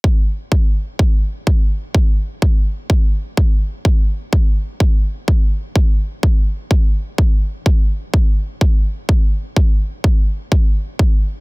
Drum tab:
BD |o-o-o-o-|o-o-o-o-|o-o-o-o-|o-o-o-o-|

BD |o-o-o-o-|o-o-o-o-|